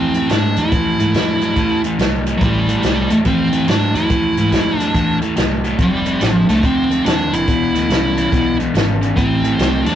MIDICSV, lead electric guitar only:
0, 0, Header, 1, 2, 480
1, 0, Start_track
1, 0, Tempo, 422238
1, 820, Time_signature, 4, 2, 24, 8
1, 11312, End_track
2, 0, Start_track
2, 0, Title_t, "Lead electric guitar"
2, 0, Program_c, 0, 29
2, 0, Note_on_c, 0, 60, 89
2, 347, Note_off_c, 0, 60, 0
2, 352, Note_on_c, 0, 62, 97
2, 664, Note_off_c, 0, 62, 0
2, 677, Note_on_c, 0, 64, 90
2, 2056, Note_off_c, 0, 64, 0
2, 2700, Note_on_c, 0, 54, 50
2, 2747, Note_off_c, 0, 54, 0
2, 2771, Note_on_c, 0, 55, 78
2, 3202, Note_off_c, 0, 55, 0
2, 3247, Note_on_c, 0, 55, 68
2, 3542, Note_off_c, 0, 55, 0
2, 3546, Note_on_c, 0, 57, 85
2, 3603, Note_off_c, 0, 57, 0
2, 3718, Note_on_c, 0, 60, 91
2, 4154, Note_off_c, 0, 60, 0
2, 4197, Note_on_c, 0, 62, 102
2, 4486, Note_on_c, 0, 64, 95
2, 4505, Note_off_c, 0, 62, 0
2, 5441, Note_off_c, 0, 64, 0
2, 5441, Note_on_c, 0, 62, 95
2, 5881, Note_off_c, 0, 62, 0
2, 6615, Note_on_c, 0, 55, 72
2, 7218, Note_off_c, 0, 55, 0
2, 7218, Note_on_c, 0, 53, 72
2, 7370, Note_off_c, 0, 53, 0
2, 7375, Note_on_c, 0, 57, 85
2, 7547, Note_off_c, 0, 57, 0
2, 7558, Note_on_c, 0, 60, 94
2, 7995, Note_off_c, 0, 60, 0
2, 8025, Note_on_c, 0, 62, 96
2, 8338, Note_on_c, 0, 64, 94
2, 8340, Note_off_c, 0, 62, 0
2, 9728, Note_off_c, 0, 64, 0
2, 10418, Note_on_c, 0, 60, 100
2, 11206, Note_off_c, 0, 60, 0
2, 11211, Note_on_c, 0, 62, 98
2, 11312, Note_off_c, 0, 62, 0
2, 11312, End_track
0, 0, End_of_file